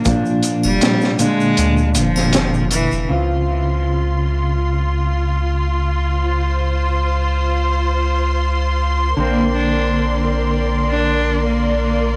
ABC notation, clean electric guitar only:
X:1
M:4/4
L:1/8
Q:"Swing 16ths" 1/4=79
K:Dblyd
V:1 name="Clean electric guitar" clef=bass
[B,,F,=D]3 [B,,=D,D]4- [B,,D,D] | [D,CF]8- | [D,CF]8 | [=D,B,C]8 |]